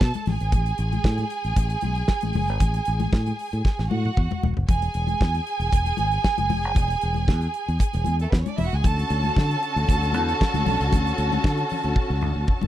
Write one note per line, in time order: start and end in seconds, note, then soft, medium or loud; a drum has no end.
0.00 0.11 B2 medium
0.00 0.25 A4 medium
0.00 0.25 A5 medium
0.00 kick loud
0.00 snare loud
0.14 closed hi-hat medium
0.14 muted conga soft
0.14 high conga medium
0.26 0.37 A1 medium
0.26 3.86 G#4 medium
0.26 3.87 G#5 medium
0.26 snare soft
0.26 open hi-hat medium
0.26 high conga medium
0.26 low conga medium
0.40 0.49 G#1 medium
0.40 closed hi-hat soft
0.52 0.71 A1 loud
0.52 kick loud
0.52 closed hi-hat medium
0.52 muted conga soft
0.52 low conga medium
0.66 closed hi-hat medium
0.78 0.97 A1 loud
0.78 closed hi-hat medium
0.92 closed hi-hat soft
0.92 high conga medium
1.04 1.23 A2 loud
1.04 kick loud
1.04 snare loud
1.04 muted conga soft
1.18 closed hi-hat soft
1.18 muted conga soft
1.18 high conga soft
1.30 closed hi-hat medium
1.44 1.53 A1 medium
1.44 closed hi-hat soft
1.56 1.75 A1 loud
1.56 kick loud
1.56 closed hi-hat medium
1.56 muted conga soft
1.70 closed hi-hat medium
1.81 2.01 B1 medium
1.81 closed hi-hat medium
1.81 high conga medium
1.95 closed hi-hat soft
2.08 kick loud
2.08 snare loud
2.08 muted conga soft
2.21 2.31 A1 medium
2.21 closed hi-hat medium
2.21 muted conga soft
2.21 high conga medium
2.33 2.49 F#1 medium
2.33 open hi-hat medium
2.33 high conga medium
2.33 low conga medium
2.48 2.57 G#1 medium
2.48 closed hi-hat soft
2.60 2.79 A1 loud
2.60 kick loud
2.60 closed hi-hat medium
2.60 low conga medium
2.74 closed hi-hat soft
2.74 muted conga soft
2.85 3.06 A1 loud
2.85 closed hi-hat medium
3.00 closed hi-hat soft
3.00 high conga medium
3.13 3.31 A2 medium
3.13 kick loud
3.13 snare loud
3.13 muted conga soft
3.26 closed hi-hat soft
3.26 high conga soft
3.39 open hi-hat medium
3.53 3.61 A2 medium
3.53 closed hi-hat soft
3.65 kick loud
3.65 snare medium
3.65 muted conga soft
3.79 3.87 A1 medium
3.79 snare medium
3.79 muted conga soft
3.91 4.09 A2 medium
3.91 4.41 F#4 medium
3.91 4.41 F#5 medium
3.91 high tom medium
3.91 high conga medium
4.05 high tom medium
4.17 4.27 E2 medium
4.17 kick loud
4.17 mid tom medium
4.17 muted conga soft
4.31 mid tom medium
4.31 muted conga soft
4.31 high conga medium
4.43 4.53 E1 medium
4.43 floor tom medium
4.43 high conga medium
4.43 low conga medium
4.57 4.65 F#1 medium
4.57 floor tom medium
4.68 4.87 E1 loud
4.68 8.15 G#4 medium
4.68 8.15 G#5 loud
4.68 kick loud
4.68 closed hi-hat medium
4.68 low conga medium
4.82 closed hi-hat soft
4.82 muted conga soft
4.94 5.13 E1 medium
4.94 closed hi-hat medium
5.07 closed hi-hat soft
5.07 high conga medium
5.21 5.39 E2 medium
5.21 kick loud
5.21 snare loud
5.21 muted conga soft
5.35 closed hi-hat soft
5.35 muted conga soft
5.47 closed hi-hat medium
5.60 5.68 E1 medium
5.60 closed hi-hat soft
5.72 5.91 E1 medium
5.72 kick loud
5.72 closed hi-hat medium
5.72 muted conga soft
5.85 closed hi-hat medium
5.85 muted conga soft
5.97 6.17 G#1 medium
5.97 closed hi-hat medium
5.97 high conga medium
6.12 closed hi-hat soft
6.24 kick loud
6.24 snare loud
6.24 muted conga soft
6.38 6.51 F#1 medium
6.38 closed hi-hat medium
6.38 high conga medium
6.49 6.65 E1 loud
6.49 open hi-hat medium
6.49 high conga medium
6.49 low conga medium
6.64 6.73 F#1 loud
6.64 closed hi-hat soft
6.75 6.94 E1 loud
6.75 kick loud
6.75 closed hi-hat medium
6.75 muted conga soft
6.75 low conga medium
6.88 closed hi-hat medium
6.88 muted conga soft
7.01 7.30 E1 medium
7.01 closed hi-hat medium
7.14 closed hi-hat soft
7.14 high conga medium
7.28 7.46 E2 medium
7.28 kick loud
7.28 snare loud
7.41 closed hi-hat soft
7.41 muted conga soft
7.54 closed hi-hat medium
7.68 7.77 E2 medium
7.68 closed hi-hat soft
7.79 kick loud
7.79 closed hi-hat loud
7.79 muted conga soft
7.93 8.03 E1 loud
7.93 closed hi-hat medium
7.93 muted conga soft
8.04 8.25 E2 medium
8.04 closed hi-hat medium
8.04 high conga medium
8.19 8.31 A3 medium
8.19 8.31 A4 medium
8.19 closed hi-hat soft
8.31 8.42 E2 medium
8.31 8.40 B3 medium
8.31 8.40 B4 medium
8.31 kick medium
8.31 snare loud
8.40 8.49 C#4 medium
8.40 8.49 C#5 medium
8.46 8.58 D4 medium
8.46 8.58 D5 medium
8.46 closed hi-hat medium
8.46 high conga medium
8.57 8.68 E1 medium
8.57 8.66 E4 medium
8.57 8.66 E5 medium
8.57 open hi-hat medium
8.57 high conga medium
8.57 low conga medium
8.66 8.75 F#4 medium
8.66 8.75 F#5 medium
8.72 8.81 C#2 loud
8.72 8.84 G#4 medium
8.72 8.84 G#5 medium
8.72 closed hi-hat soft
8.82 9.03 D2 loud
8.82 12.67 D3 medium
8.82 12.67 C#4 medium
8.82 12.67 F#4 medium
8.82 12.67 A4 loud
8.82 12.67 A5 loud
8.82 kick loud
8.82 closed hi-hat medium
8.82 low conga medium
8.97 closed hi-hat medium
8.97 muted conga soft
9.10 9.29 D2 loud
9.10 closed hi-hat medium
9.24 closed hi-hat soft
9.24 high conga medium
9.36 9.55 D3 loud
9.36 kick loud
9.36 snare loud
9.50 closed hi-hat soft
9.50 muted conga soft
9.63 closed hi-hat medium
9.76 9.85 D2 medium
9.76 closed hi-hat soft
9.87 10.14 D2 medium
9.87 kick loud
9.87 closed hi-hat medium
9.87 muted conga soft
10.01 closed hi-hat medium
10.01 muted conga soft
10.13 10.32 E2 medium
10.13 closed hi-hat medium
10.13 high conga medium
10.29 closed hi-hat soft
10.41 kick loud
10.41 snare loud
10.54 10.62 D2 medium
10.54 closed hi-hat soft
10.54 muted conga soft
10.54 high conga medium
10.66 10.76 B1 loud
10.66 open hi-hat medium
10.66 high conga medium
10.66 low conga medium
10.80 10.89 C#2 medium
10.80 closed hi-hat medium
10.92 11.11 D2 loud
10.92 kick loud
10.92 closed hi-hat medium
10.92 muted conga soft
10.92 low conga medium
11.05 closed hi-hat medium
11.05 muted conga soft
11.18 11.36 D2 loud
11.18 closed hi-hat medium
11.32 closed hi-hat soft
11.32 high conga medium
11.44 11.63 D3 loud
11.44 kick loud
11.44 snare loud
11.58 closed hi-hat soft
11.58 muted conga soft
11.69 open hi-hat medium
11.69 low conga medium
11.84 11.93 D2 medium
11.84 closed hi-hat soft
11.96 kick loud
11.96 high tom medium
11.96 muted conga soft
12.10 12.22 C#2 medium
12.10 muted conga soft
12.21 12.32 D2 loud
12.21 mid tom medium
12.21 high conga medium
12.36 12.44 D2 medium
12.47 kick loud
12.47 mid tom medium
12.61 12.67 F#1 medium
12.61 mid tom medium
12.61 muted conga soft
12.61 high conga medium